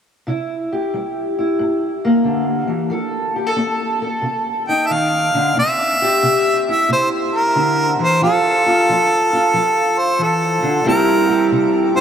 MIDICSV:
0, 0, Header, 1, 3, 480
1, 0, Start_track
1, 0, Tempo, 662252
1, 188, Time_signature, 4, 2, 24, 8
1, 8703, End_track
2, 0, Start_track
2, 0, Title_t, "Harmonica"
2, 0, Program_c, 0, 22
2, 3393, Note_on_c, 0, 79, 74
2, 3526, Note_on_c, 0, 76, 62
2, 3537, Note_off_c, 0, 79, 0
2, 3570, Note_on_c, 0, 77, 85
2, 3581, Note_off_c, 0, 76, 0
2, 4043, Note_off_c, 0, 77, 0
2, 4052, Note_on_c, 0, 76, 83
2, 4815, Note_off_c, 0, 76, 0
2, 4857, Note_on_c, 0, 76, 81
2, 4995, Note_off_c, 0, 76, 0
2, 5020, Note_on_c, 0, 72, 77
2, 5136, Note_off_c, 0, 72, 0
2, 5328, Note_on_c, 0, 70, 74
2, 5771, Note_off_c, 0, 70, 0
2, 5813, Note_on_c, 0, 72, 84
2, 5952, Note_off_c, 0, 72, 0
2, 5966, Note_on_c, 0, 69, 85
2, 7237, Note_on_c, 0, 72, 70
2, 7248, Note_off_c, 0, 69, 0
2, 7410, Note_on_c, 0, 69, 76
2, 7421, Note_off_c, 0, 72, 0
2, 7877, Note_off_c, 0, 69, 0
2, 7885, Note_on_c, 0, 70, 70
2, 8325, Note_off_c, 0, 70, 0
2, 8671, Note_on_c, 0, 72, 74
2, 8703, Note_off_c, 0, 72, 0
2, 8703, End_track
3, 0, Start_track
3, 0, Title_t, "Steel-string acoustic guitar"
3, 0, Program_c, 1, 25
3, 194, Note_on_c, 1, 48, 59
3, 202, Note_on_c, 1, 64, 49
3, 525, Note_on_c, 1, 67, 38
3, 641, Note_off_c, 1, 48, 0
3, 679, Note_on_c, 1, 55, 45
3, 996, Note_off_c, 1, 64, 0
3, 1004, Note_on_c, 1, 64, 45
3, 1124, Note_off_c, 1, 55, 0
3, 1153, Note_on_c, 1, 43, 54
3, 1483, Note_on_c, 1, 58, 48
3, 1602, Note_off_c, 1, 43, 0
3, 1623, Note_on_c, 1, 50, 45
3, 1936, Note_off_c, 1, 50, 0
3, 1939, Note_on_c, 1, 52, 51
3, 2101, Note_on_c, 1, 53, 62
3, 2102, Note_off_c, 1, 64, 0
3, 2106, Note_off_c, 1, 52, 0
3, 2107, Note_off_c, 1, 67, 0
3, 2110, Note_on_c, 1, 69, 63
3, 2119, Note_off_c, 1, 58, 0
3, 2432, Note_off_c, 1, 69, 0
3, 2435, Note_on_c, 1, 67, 41
3, 2512, Note_off_c, 1, 67, 0
3, 2512, Note_on_c, 1, 69, 40
3, 2557, Note_off_c, 1, 53, 0
3, 2582, Note_on_c, 1, 60, 52
3, 2904, Note_off_c, 1, 69, 0
3, 2913, Note_on_c, 1, 69, 56
3, 3037, Note_off_c, 1, 60, 0
3, 3056, Note_on_c, 1, 48, 54
3, 3398, Note_on_c, 1, 63, 50
3, 3514, Note_off_c, 1, 48, 0
3, 3552, Note_on_c, 1, 51, 44
3, 3869, Note_off_c, 1, 51, 0
3, 3871, Note_on_c, 1, 50, 52
3, 4015, Note_off_c, 1, 69, 0
3, 4017, Note_off_c, 1, 63, 0
3, 4032, Note_off_c, 1, 50, 0
3, 4035, Note_on_c, 1, 48, 63
3, 4036, Note_on_c, 1, 60, 51
3, 4363, Note_on_c, 1, 67, 53
3, 4483, Note_off_c, 1, 48, 0
3, 4512, Note_on_c, 1, 48, 67
3, 4845, Note_on_c, 1, 64, 48
3, 4961, Note_off_c, 1, 48, 0
3, 4991, Note_on_c, 1, 48, 67
3, 5440, Note_off_c, 1, 48, 0
3, 5474, Note_on_c, 1, 50, 58
3, 5790, Note_off_c, 1, 50, 0
3, 5793, Note_on_c, 1, 52, 52
3, 5938, Note_off_c, 1, 64, 0
3, 5952, Note_off_c, 1, 52, 0
3, 5953, Note_on_c, 1, 53, 75
3, 5956, Note_off_c, 1, 67, 0
3, 5957, Note_on_c, 1, 65, 60
3, 6270, Note_off_c, 1, 65, 0
3, 6278, Note_on_c, 1, 65, 49
3, 6400, Note_off_c, 1, 53, 0
3, 6445, Note_on_c, 1, 53, 61
3, 6572, Note_off_c, 1, 60, 0
3, 6753, Note_off_c, 1, 65, 0
3, 6761, Note_on_c, 1, 65, 55
3, 6884, Note_off_c, 1, 53, 0
3, 6911, Note_on_c, 1, 53, 68
3, 7357, Note_off_c, 1, 53, 0
3, 7384, Note_on_c, 1, 52, 51
3, 7699, Note_off_c, 1, 52, 0
3, 7702, Note_on_c, 1, 50, 58
3, 7852, Note_off_c, 1, 65, 0
3, 7855, Note_off_c, 1, 50, 0
3, 7858, Note_on_c, 1, 48, 75
3, 7861, Note_on_c, 1, 55, 62
3, 7872, Note_on_c, 1, 60, 63
3, 7875, Note_on_c, 1, 64, 60
3, 7879, Note_on_c, 1, 67, 65
3, 8183, Note_off_c, 1, 67, 0
3, 8186, Note_on_c, 1, 67, 61
3, 8308, Note_off_c, 1, 48, 0
3, 8344, Note_on_c, 1, 48, 61
3, 8664, Note_off_c, 1, 64, 0
3, 8667, Note_on_c, 1, 64, 55
3, 8703, Note_off_c, 1, 48, 0
3, 8703, Note_off_c, 1, 55, 0
3, 8703, Note_off_c, 1, 60, 0
3, 8703, Note_off_c, 1, 64, 0
3, 8703, Note_off_c, 1, 67, 0
3, 8703, End_track
0, 0, End_of_file